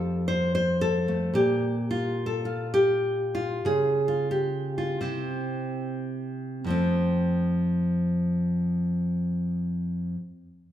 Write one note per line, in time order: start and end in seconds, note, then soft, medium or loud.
0.00 1.33 F2 medium
0.00 1.35 F3 soft
0.00 1.07 A3 soft
0.00 0.80 A4 loud
0.28 0.54 C5 medium
0.55 1.35 C5 medium
0.81 1.35 A4 loud
1.08 1.35 A3 medium
1.34 3.61 A#2 medium
1.34 2.26 G4 loud
1.91 2.44 F4 medium
2.26 2.73 A4 medium
2.45 3.33 F4 medium
2.74 3.65 G4 loud
3.35 3.66 F4 medium
3.65 4.97 C#3 medium
3.65 4.31 G#4 medium
4.08 4.77 F4 medium
4.31 5.02 G4 medium
4.78 5.02 F4 medium
5.01 6.64 C3 medium
5.01 6.59 C4 medium
5.01 6.64 E4 medium
6.64 10.15 F2 medium
6.64 10.17 F3 medium
6.69 10.19 A3 medium
6.69 10.17 C4 medium